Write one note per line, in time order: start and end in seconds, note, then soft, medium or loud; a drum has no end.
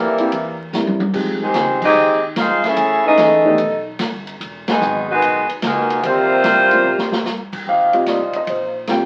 0.00 0.17 F2 loud
0.00 0.57 E3 medium
0.00 0.57 G3 medium
0.00 0.58 G3 medium
0.00 0.57 A#3 medium
0.00 0.58 C4 medium
0.00 0.58 E4 medium
0.00 0.58 A#4 medium
0.18 0.31 G3 medium
0.18 0.31 A#3 medium
0.18 0.31 C4 medium
0.18 0.32 E4 medium
0.18 0.32 G4 medium
0.18 muted upright bass stroke soft
0.18 ride medium
0.32 0.72 E2 medium
0.32 ride medium
0.73 1.13 G2 medium
0.73 0.98 G3 medium
0.73 0.99 A#3 medium
0.73 0.99 C4 medium
0.73 0.99 E4 medium
0.73 0.99 A#4 medium
0.73 snare medium
0.73 hi-hat pedal medium
0.87 high tom medium
1.00 high tom medium
1.13 1.39 F2 medium
1.13 1.39 F3 medium
1.13 1.39 G#3 medium
1.13 1.39 C4 soft
1.13 1.39 D#4 medium
1.13 1.39 G4 medium
1.13 kick medium
1.13 crash medium
1.41 1.80 D#3 medium
1.41 1.80 G#3 medium
1.41 1.81 G#3 medium
1.41 1.80 C4 medium
1.41 1.81 D#4 medium
1.41 1.81 G4 medium
1.41 1.81 C5 medium
1.41 muted upright bass stroke soft
1.54 1.94 C#2 loud
1.54 snare medium
1.54 hi-hat pedal medium
1.54 ride medium
1.82 2.21 G#3 medium
1.82 2.21 C4 medium
1.82 2.22 C4 medium
1.82 2.21 D#4 medium
1.82 2.22 G4 medium
1.82 2.22 G#4 medium
1.82 2.22 D#5 loud
1.82 kick medium
1.82 crash medium
1.95 2.35 D#2 medium
2.36 2.76 G2 loud
2.36 2.63 G#3 medium
2.36 2.63 C4 medium
2.36 2.64 D#4 medium
2.36 2.63 F4 medium
2.36 2.64 G#4 medium
2.36 2.64 C5 medium
2.36 2.64 F5 loud
2.36 snare medium
2.36 hi-hat pedal medium
2.36 ride medium
2.64 3.04 A3 medium
2.64 3.05 C#4 medium
2.64 3.06 C#4 loud
2.64 3.05 E4 medium
2.64 3.06 G#4 loud
2.64 3.06 A4 medium
2.64 3.06 E5 loud
2.64 snare medium
2.64 ride soft
2.76 3.16 F#2 medium
2.76 ride medium
3.05 3.56 E3 medium
3.05 3.82 A3 medium
3.05 3.57 C#4 medium
3.05 3.83 D#4 medium
3.05 3.56 G#4 medium
3.05 3.84 A4 medium
3.05 3.83 D#5 loud
3.17 3.57 E2 loud
3.17 snare medium
3.17 hi-hat pedal medium
3.17 ride medium
3.45 3.57 D#3 medium
3.45 3.58 A3 medium
3.45 3.57 B3 medium
3.45 3.58 D4 medium
3.45 3.58 G4 medium
3.58 3.98 B1 medium
3.58 ride medium
3.99 4.39 G1 loud
3.99 snare medium
3.99 hi-hat pedal medium
3.99 ride medium
4.27 ride soft
4.40 4.80 E1 medium
4.40 ride medium
4.68 5.06 B2 medium
4.68 5.06 D#3 medium
4.68 5.07 F#3 medium
4.68 5.06 G#3 medium
4.68 5.07 B3 medium
4.68 5.07 D#4 medium
4.68 5.07 G#4 medium
4.68 snare medium
4.68 ride medium
4.81 5.21 G#1 loud
4.81 hi-hat pedal medium
5.08 5.46 D#3 medium
5.08 5.46 G#3 medium
5.08 5.48 G#3 medium
5.08 5.46 B3 medium
5.08 5.48 D#4 medium
5.08 5.48 F#4 medium
5.08 5.48 B4 loud
5.22 5.48 B1 medium
5.22 ride medium
5.49 muted upright bass stroke soft
5.49 ride medium
5.62 6.02 C#2 loud
5.62 6.01 B2 medium
5.62 6.01 D#3 medium
5.62 6.02 G#3 medium
5.62 6.01 A#3 medium
5.62 6.02 D#4 medium
5.62 6.02 F#4 medium
5.62 6.02 A#4 medium
5.62 snare medium
5.62 hi-hat pedal medium
5.62 ride medium
5.90 ride medium
6.03 6.43 D#2 medium
6.03 7.25 C3 medium
6.03 7.25 G3 loud
6.03 7.27 A#3 medium
6.03 7.25 C4 medium
6.03 7.27 F4 loud
6.03 7.27 G4 loud
6.03 7.27 C5 loud
6.03 ride medium
6.44 6.84 C2 loud
6.44 snare medium
6.44 hi-hat pedal medium
6.44 ride medium
6.71 6.84 G3 medium
6.71 6.84 A#3 medium
6.71 6.84 C4 medium
6.71 6.84 C#4 medium
6.71 6.84 F4 medium
6.71 ride medium
6.84 7.24 C3 medium
6.98 snare medium
7.12 snare medium
7.25 7.65 G2 medium
7.25 snare medium
7.25 hi-hat pedal medium
7.53 kick medium
7.53 crash medium
7.66 8.06 D#2 medium
7.66 8.05 F3 medium
7.66 8.05 C4 medium
7.66 8.05 D#4 medium
7.66 8.06 G4 medium
7.66 7.94 F5 medium
7.93 8.16 G3 soft
7.93 8.17 C4 soft
7.93 8.17 F4 soft
7.93 8.07 D#5 medium
7.93 ride soft
8.06 8.32 C2 medium
8.06 8.69 F3 medium
8.06 8.69 C4 medium
8.06 8.69 D#4 medium
8.06 8.69 F4 medium
8.06 8.34 D5 medium
8.06 snare medium
8.06 hi-hat pedal medium
8.06 ride medium
8.33 8.48 D#5 medium
8.33 muted upright bass stroke soft
8.33 ride soft
8.47 8.87 A#1 medium
8.47 8.75 C5 soft
8.47 ride medium
8.87 9.05 G#1 loud
8.87 9.05 G3 soft
8.87 9.05 C4 soft
8.87 9.05 F4 soft
8.87 9.05 G5 medium
8.87 snare medium
8.87 hi-hat pedal medium
8.87 ride medium